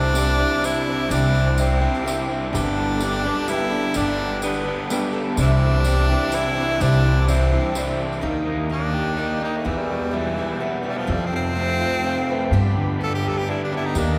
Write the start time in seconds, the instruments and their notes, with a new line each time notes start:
Already playing: upright bass C2, steel-string acoustic guitar C3 G3 C4 D4 E4, tenor saxophone D4, overdriven electric guitar G4, tonewheel organ C5 E5 D6
0.15 steel-string acoustic guitar G3 C4 D4 E4, grand piano E4 C5 E5, overdriven electric guitar G4, tambourine
0.27 tambourine
0.37 steel-string acoustic guitar C4 D4 E4, overdriven electric guitar G4
0.61 steel-string acoustic guitar G3 C4 D4 E4, grand piano E4 C5 D5, tambourine
0.65 tenor saxophone E4, overdriven electric guitar G4
0.85 steel-string acoustic guitar C4 D4 E4
1.10 upright bass C2, steel-string acoustic guitar C3 G3 C4 D4 E4, tenor saxophone D4, overdriven electric guitar G4, tambourine
1.23 tambourine
1.35 tambourine
1.57 steel-string acoustic guitar G3 C4 D4 E4, tenor saxophone C4, grand piano E4 C5 D5, overdriven electric guitar G4, tambourine
1.81 steel-string acoustic guitar C4 D4 E4, overdriven electric guitar G4
1.95 tambourine
2.04 steel-string acoustic guitar G3 C4 D4 E4, grand piano E4 C5 E5, overdriven electric guitar G4, tambourine
2.29 steel-string acoustic guitar C4 D4 E4
2.52 upright bass G1, overdriven electric guitar G2 D3 G4, steel-string acoustic guitar G3 B3 D4 A4, tenor saxophone D4, grand piano G4 A4 B4, tonewheel organ A4 G5 B5, tambourine
2.99 steel-string acoustic guitar G3 B3 D4 A4, grand piano G4 A4 B4, tambourine
3.04 overdriven electric guitar G4
3.13 tambourine
3.24 steel-string acoustic guitar B3 D4 A4, overdriven electric guitar G4
3.28 overdriven electric guitar G3
3.47 steel-string acoustic guitar G3 B3 D4 A4, tenor saxophone E4, grand piano G4 A4 B4, tambourine
3.52 overdriven electric guitar G4
3.70 steel-string acoustic guitar B3 D4 A4
3.94 upright bass G1, overdriven electric guitar G2 D3 G4, steel-string acoustic guitar G3 B3 D4 A4, tenor saxophone D4, tambourine
4.42 steel-string acoustic guitar G3 B3 D4 A4, tenor saxophone B3, grand piano G4 A4 B4, overdriven electric guitar G4, tambourine
4.54 tambourine
4.66 overdriven electric guitar G3 B3 D4 G4
4.90 steel-string acoustic guitar G3 B3 D4 A4, grand piano G4 A4 B4, overdriven electric guitar G4, tambourine
5.13 steel-string acoustic guitar B3 D4 A4
5.35 upright bass C2, steel-string acoustic guitar C3 G3 C4 D4, overdriven electric guitar E3, grand piano E4 C5 D5, tonewheel organ C5 E5 D6, tambourine
5.40 tenor saxophone D4, steel-string acoustic guitar E4, overdriven electric guitar G4
5.84 overdriven electric guitar E3 G4, steel-string acoustic guitar G3 C4 D4, grand piano E4 C5 D5, tambourine
5.88 steel-string acoustic guitar E4
5.97 tambourine
6.08 steel-string acoustic guitar C4 D4 E4, overdriven electric guitar G4
6.12 overdriven electric guitar G3
6.31 overdriven electric guitar E3, steel-string acoustic guitar G3 C4 D4 E4, grand piano E4 C5 D5, tenor saxophone E4, tambourine
6.36 overdriven electric guitar G4
6.55 steel-string acoustic guitar C4 D4 E4
6.80 upright bass C2, steel-string acoustic guitar C3 G3 C4 D4 E4, overdriven electric guitar E3 G4, tenor saxophone D4, tambourine
6.93 tambourine
7.27 overdriven electric guitar E3 G4, steel-string acoustic guitar G3 C4 D4 E4, tenor saxophone C4, grand piano E4 C5 D5, tambourine
7.41 tambourine
7.51 steel-string acoustic guitar C4 D4 E4, overdriven electric guitar G4
7.55 overdriven electric guitar G3
7.74 overdriven electric guitar E3 G4, steel-string acoustic guitar G3 C4 D4 E4, grand piano E4 C5, tambourine
7.79 grand piano D5
7.88 tambourine
7.99 steel-string acoustic guitar C4 D4 E4
8.12 tambourine
8.21 upright bass D#2, steel-string acoustic guitar D#3 G3 A#3 D#4 G4, tonewheel organ A#4 G5 D#6
8.46 overdriven electric guitar A#3
8.69 steel-string acoustic guitar G3 A#3 G4, tenor saxophone D4
8.94 overdriven electric guitar G4
9.17 steel-string acoustic guitar G3 A#3 D#4 G4
9.41 steel-string acoustic guitar A#3 D#4 G4, tenor saxophone D#4
9.57 tenor saxophone A3
9.64 steel-string acoustic guitar E2 B2 E3 G3 B3 E4, upright bass E2, tenor saxophone E3, tonewheel organ B4 E6
9.78 tenor saxophone G3
9.91 overdriven electric guitar B2
10.11 steel-string acoustic guitar E3 G3 B3 E4
10.17 tenor saxophone E3
10.37 steel-string acoustic guitar E3 G3 B3 E4
10.60 steel-string acoustic guitar E3 G3 B3 E4
10.83 steel-string acoustic guitar E3 G3 B3 E4
10.88 tenor saxophone G3
10.98 tenor saxophone F3
11.07 steel-string acoustic guitar F2 C3 F3 A3 C4 F4, upright bass F2, tonewheel organ C6
11.11 tenor saxophone G3, tonewheel organ A4 F5
11.25 tenor saxophone C4
11.32 overdriven electric guitar C3, tenor saxophone C4
11.55 steel-string acoustic guitar F3 A3 C4 F4
11.80 steel-string acoustic guitar F3 A3 C4 F4
12.03 steel-string acoustic guitar F3 A3 C4 F4, upright piano G5
12.19 upright piano F5
12.28 steel-string acoustic guitar F3 A3 C4 F4, upright piano B4 G5
12.51 upright bass G2, steel-string acoustic guitar G2 D3 G3 B3 D4 G4, tonewheel organ G4 D5 B5
12.77 overdriven electric guitar D3
13.01 steel-string acoustic guitar G3 B3 D4 G4, tenor saxophone A4
13.15 tenor saxophone G4
13.24 overdriven electric guitar G4
13.28 tenor saxophone A4
13.38 tenor saxophone G4
13.48 steel-string acoustic guitar G3 B3 D4 G4, tenor saxophone E4
13.64 tenor saxophone D4
13.72 steel-string acoustic guitar G3 B3 D4 G4
13.77 tenor saxophone E4
13.86 tenor saxophone D#4
13.93 upright bass D#2, tonewheel organ D#4 A#5, grand piano D#4 G4, tambourine
13.97 steel-string acoustic guitar D#3 A#3 D#4 G4, tenor saxophone D4, grand piano A#4